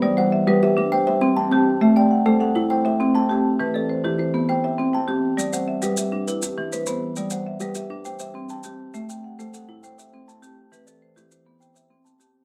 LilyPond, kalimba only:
<<
  \new Staff \with { instrumentName = "Kalimba" } { \time 12/8 \key c \lydian \tempo 4. = 135 r8 fis''4 g'8 g'4 g''8 c''4 a''4. | r8 g''4 a'8 a'4 g''8 c''4 a''4. | r8 d''4 e'8 e'4 g''8 c''4 a''4. | r8 fis''4 g'8 g'4 b'8 e'4 c''4. |
r8 fis''4 g'8 g'4 g''8 c''4 a''4. | r8 g''4 a'8 a'4 g''8 c''4 a''4. | r8 d''4 e'8 e'4 g''8 c''4 a''4. | }
  \new Staff \with { instrumentName = "Kalimba" } { \time 12/8 \key c \lydian g4 r8 g4 d'8 r4 c'4 c'4 | a4 r8 a4 e'8 r4 c'4 c'4 | e4 r8 e4 b8 r4 c'4 c'4 | g4 r8 g4 d'8 r4 e4 e4 |
g4 r8 g4 d'8 r4 c'4 c'4 | a4 r8 a4 e'8 r4 c'4 c'4 | e4 r8 e4 b8 r4 c'4 c'4 | }
>>